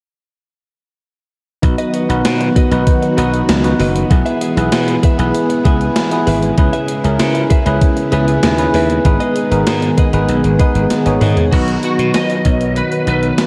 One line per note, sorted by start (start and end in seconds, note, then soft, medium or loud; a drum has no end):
1.62 1.75 B1 medium
1.62 4.08 D#3 medium
1.62 4.08 F#3 medium
1.62 1.92 B3 medium
1.62 6.54 B3 medium
1.62 1.92 D#4 medium
1.62 4.08 F#4 medium
1.62 1.92 F#4 medium
1.62 1.93 B4 medium
1.62 muted clean electric guitar stroke soft
1.62 kick medium
1.62 closed hi-hat medium
1.78 1.92 F#4 medium
1.78 1.94 B4 medium
1.78 1.94 D#5 medium
1.78 closed hi-hat soft
1.94 2.10 F#4 medium
1.94 2.10 B4 medium
1.94 2.08 D#5 medium
1.94 closed hi-hat medium
2.09 2.21 B1 medium
2.09 2.48 B3 medium
2.09 2.49 D#4 medium
2.09 2.49 F#4 medium
2.09 2.49 B4 medium
2.09 muted clean electric guitar stroke soft
2.09 closed hi-hat medium
2.25 2.48 B2 medium
2.25 snare loud
2.25 closed hi-hat medium
2.40 muted clean electric guitar stroke soft
2.40 closed hi-hat medium
2.56 2.76 F#4 medium
2.56 2.72 B4 medium
2.56 2.70 D#5 medium
2.56 kick medium
2.56 closed hi-hat medium
2.71 2.83 B1 medium
2.71 3.01 B3 medium
2.71 3.01 D#4 medium
2.71 3.01 F#4 medium
2.71 3.01 B4 medium
2.71 muted clean electric guitar stroke soft
2.71 closed hi-hat medium
2.87 muted clean electric guitar stroke soft
2.87 kick medium
2.87 closed hi-hat medium
3.02 muted clean electric guitar stroke soft
3.02 closed hi-hat soft
3.17 3.41 B1 medium
3.17 3.47 B3 medium
3.17 3.47 D#4 medium
3.17 3.38 F#4 medium
3.17 3.47 F#4 medium
3.17 3.33 B4 medium
3.17 3.48 B4 medium
3.17 3.32 D#5 medium
3.17 closed hi-hat medium
3.33 muted clean electric guitar stroke soft
3.33 closed hi-hat soft
3.49 3.72 C#2 medium
3.49 snare loud
3.49 closed hi-hat medium
3.64 3.93 B3 medium
3.64 3.93 D#4 medium
3.64 3.94 F#4 medium
3.64 3.94 B4 medium
3.64 muted clean electric guitar stroke soft
3.64 closed hi-hat medium
3.79 4.03 F#1 medium
3.79 4.00 F#4 medium
3.79 3.95 B4 medium
3.79 3.94 D#5 medium
3.79 open hi-hat medium
3.95 muted clean electric guitar stroke soft
3.95 closed hi-hat soft
4.10 4.22 B1 medium
4.10 6.55 E3 medium
4.10 11.49 G#3 medium
4.10 4.40 B3 medium
4.10 4.40 E4 medium
4.10 6.55 G#4 medium
4.10 4.40 G#4 medium
4.10 4.40 B4 medium
4.10 muted clean electric guitar stroke soft
4.10 kick loud
4.10 closed hi-hat medium
4.26 4.40 G#4 medium
4.26 4.41 B4 medium
4.26 4.42 E5 medium
4.26 closed hi-hat soft
4.41 4.57 G#4 medium
4.41 4.57 B4 medium
4.41 4.56 E5 medium
4.41 closed hi-hat medium
4.57 4.69 B1 medium
4.57 4.96 B3 medium
4.57 4.96 E4 medium
4.57 4.96 G#4 medium
4.57 4.97 B4 medium
4.57 muted clean electric guitar stroke soft
4.57 closed hi-hat medium
4.72 4.96 B2 medium
4.72 snare loud
4.72 closed hi-hat medium
4.88 muted clean electric guitar stroke soft
4.88 closed hi-hat medium
5.03 5.24 G#4 medium
5.03 5.19 B4 medium
5.03 5.18 E5 medium
5.03 kick medium
5.03 closed hi-hat medium
5.18 5.30 B1 medium
5.18 5.48 B3 medium
5.18 5.48 E4 medium
5.18 5.48 G#4 medium
5.18 5.49 B4 medium
5.18 muted clean electric guitar stroke soft
5.18 closed hi-hat medium
5.34 muted clean electric guitar stroke soft
5.34 closed hi-hat medium
5.50 muted clean electric guitar stroke soft
5.50 closed hi-hat soft
5.65 5.88 C#2 medium
5.65 5.94 B3 medium
5.65 5.95 E4 medium
5.65 5.85 G#4 medium
5.65 5.95 G#4 medium
5.65 5.81 B4 medium
5.65 5.95 B4 medium
5.65 5.79 E5 medium
5.65 kick medium
5.65 closed hi-hat medium
5.81 muted clean electric guitar stroke soft
5.81 closed hi-hat soft
5.96 snare loud
5.96 closed hi-hat medium
6.11 6.41 B3 medium
6.11 6.41 E4 medium
6.11 6.41 G#4 medium
6.11 6.42 B4 medium
6.11 muted clean electric guitar stroke soft
6.11 closed hi-hat soft
6.27 6.50 G#1 medium
6.27 6.47 G#4 medium
6.27 6.43 B4 medium
6.27 6.41 E5 medium
6.27 open hi-hat medium
6.43 muted clean electric guitar stroke soft
6.43 closed hi-hat soft
6.58 6.69 C#2 medium
6.58 9.03 C#3 medium
6.58 11.49 B3 medium
6.58 6.87 C#4 medium
6.58 9.03 E4 medium
6.58 6.87 E4 medium
6.58 6.88 G#4 medium
6.58 6.88 B4 medium
6.58 muted clean electric guitar stroke soft
6.58 kick loud
6.58 closed hi-hat medium
6.73 6.87 G#4 medium
6.73 6.88 B4 medium
6.73 6.89 E5 medium
6.73 closed hi-hat soft
6.88 7.05 G#4 medium
6.88 7.04 B4 medium
6.88 7.03 E5 medium
6.88 closed hi-hat medium
7.04 7.16 C#2 medium
7.04 7.43 C#4 medium
7.04 7.43 E4 medium
7.04 7.44 G#4 medium
7.04 7.44 A#4 medium
7.04 muted clean electric guitar stroke soft
7.04 closed hi-hat medium
7.19 7.43 C#3 medium
7.19 snare loud
7.19 closed hi-hat medium
7.35 muted clean electric guitar stroke soft
7.35 closed hi-hat medium
7.50 7.71 G#4 medium
7.50 7.66 B4 medium
7.50 7.65 E5 medium
7.50 kick medium
7.50 closed hi-hat medium
7.66 7.78 C#2 medium
7.66 7.95 C#4 medium
7.66 7.96 E4 medium
7.66 7.96 G#4 medium
7.66 7.96 B4 medium
7.66 muted clean electric guitar stroke soft
7.66 closed hi-hat medium
7.81 muted clean electric guitar stroke soft
7.81 kick medium
7.81 closed hi-hat medium
7.97 muted clean electric guitar stroke soft
7.97 closed hi-hat soft
8.12 8.36 C#2 medium
8.12 8.42 C#4 medium
8.12 8.42 E4 medium
8.12 8.28 G#4 medium
8.12 8.42 G#4 medium
8.12 8.27 B4 medium
8.12 8.42 B4 medium
8.12 8.26 E5 medium
8.12 closed hi-hat medium
8.27 8.45 G#4 soft
8.27 8.44 B4 medium
8.27 8.44 E5 medium
8.27 closed hi-hat soft
8.43 8.67 D#2 medium
8.43 snare loud
8.43 closed hi-hat medium
8.58 8.88 C#4 medium
8.58 8.88 E4 medium
8.58 8.88 G#4 medium
8.58 8.89 B4 medium
8.58 muted clean electric guitar stroke soft
8.58 closed hi-hat medium
8.74 8.97 D#2 medium
8.74 8.95 G#4 medium
8.74 8.90 B4 medium
8.74 8.88 E5 medium
8.74 open hi-hat medium
8.90 muted clean electric guitar stroke soft
8.90 closed hi-hat soft
9.05 9.17 G#1 loud
9.05 11.50 D#3 medium
9.05 9.34 B3 medium
9.05 9.35 D#4 medium
9.05 11.50 G#4 medium
9.05 9.35 G#4 medium
9.05 9.35 B4 medium
9.05 muted clean electric guitar stroke soft
9.05 kick medium
9.05 closed hi-hat medium
9.20 9.35 G#4 medium
9.20 9.36 B4 medium
9.20 9.37 D#5 medium
9.20 closed hi-hat soft
9.36 9.52 G#4 medium
9.36 9.51 B4 medium
9.36 9.50 D#5 medium
9.36 closed hi-hat medium
9.51 9.63 G#1 medium
9.51 9.90 B3 medium
9.51 9.91 D#4 medium
9.51 9.91 G#4 medium
9.51 9.91 A#4 medium
9.51 muted clean electric guitar stroke soft
9.51 closed hi-hat medium
9.67 9.90 G#2 medium
9.67 snare loud
9.67 closed hi-hat medium
9.82 muted clean electric guitar stroke soft
9.82 closed hi-hat medium
9.97 10.18 G#4 medium
9.97 10.13 B4 medium
9.97 10.12 D#5 medium
9.97 kick medium
9.97 closed hi-hat medium
10.13 10.25 G#1 medium
10.13 10.43 B3 medium
10.13 10.43 D#4 medium
10.13 10.43 G#4 medium
10.13 10.43 B4 medium
10.13 muted clean electric guitar stroke soft
10.13 closed hi-hat medium
10.29 10.40 B1 medium
10.29 muted clean electric guitar stroke soft
10.29 closed hi-hat medium
10.44 10.56 G#1 medium
10.44 muted clean electric guitar stroke soft
10.44 closed hi-hat soft
10.59 10.89 B3 medium
10.59 10.89 D#4 medium
10.59 10.80 G#4 medium
10.59 10.90 G#4 medium
10.59 10.75 B4 medium
10.59 10.90 B4 medium
10.59 10.74 D#5 medium
10.59 kick loud
10.59 closed hi-hat medium
10.75 10.87 G#1 medium
10.75 muted clean electric guitar stroke soft
10.75 closed hi-hat soft
10.90 11.04 D#3 medium
10.90 11.04 B3 medium
10.90 11.04 G#4 medium
10.90 snare medium
10.90 closed hi-hat medium
11.06 11.18 G#1 medium
11.06 11.36 B3 medium
11.06 11.36 D#4 medium
11.06 11.36 G#4 medium
11.06 11.36 C#5 medium
11.06 muted clean electric guitar stroke soft
11.06 closed hi-hat medium
11.21 11.45 G#2 medium
11.21 11.48 D#3 medium
11.21 11.48 B3 medium
11.21 11.42 G#4 medium
11.21 11.48 G#4 loud
11.21 11.37 B4 medium
11.21 11.35 D#5 medium
11.21 mid tom medium
11.21 open hi-hat medium
11.37 muted clean electric guitar stroke soft
11.37 closed hi-hat soft
11.37 floor tom medium
11.52 11.76 B1 medium
11.52 13.47 D#3 medium
11.52 13.47 F#3 medium
11.52 12.11 B3 medium
11.52 13.47 B3 medium
11.52 12.11 D#4 medium
11.52 13.47 F#4 medium
11.52 11.82 F#4 medium
11.52 12.12 F#4 medium
11.52 12.12 B4 medium
11.52 kick medium
11.52 closed hi-hat medium
11.52 crash medium
11.68 closed hi-hat soft
11.83 12.16 F#4 medium
11.83 closed hi-hat medium
11.99 12.11 B2 medium
11.99 closed hi-hat medium
12.14 12.78 D#5 medium
12.14 snare loud
12.14 closed hi-hat medium
12.30 closed hi-hat medium
12.45 12.80 B1 medium
12.45 12.84 B3 medium
12.45 12.85 D#4 medium
12.45 12.85 F#4 medium
12.45 12.85 C#5 medium
12.45 kick medium
12.45 closed hi-hat medium
12.61 closed hi-hat medium
12.76 13.07 B4 medium
12.76 closed hi-hat medium
12.92 closed hi-hat soft
13.07 13.30 B1 medium
13.07 13.36 B3 medium
13.07 13.37 D#4 medium
13.07 13.37 F#4 medium
13.07 13.47 B4 medium
13.07 13.37 B4 medium
13.07 closed hi-hat medium
13.23 closed hi-hat soft
13.38 snare medium
13.38 closed hi-hat medium